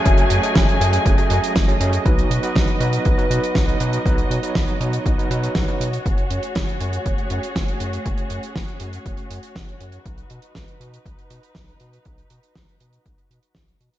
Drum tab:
HH |xxxxxxxxxxxxxxxx|xxxxxxxxxxxxxxxx|xxxxxxxxxxxxxxxx|xxxxxxxxxxxxxxxx|
SD |----o-------o---|----o-------o---|----o-------o---|----o-------o---|
BD |o---o---o---o---|o---o---o---o---|o---o---o---o---|o---o---o---o---|

HH |xxxxxxxxxxxxxxxx|xxxxxxxxxxxxxxxx|xxxxxxxxxxxxxxxx|
SD |----o-------o---|----o-------o---|----o-------o---|
BD |o---o---o---o---|o---o---o---o---|o---o---o---o---|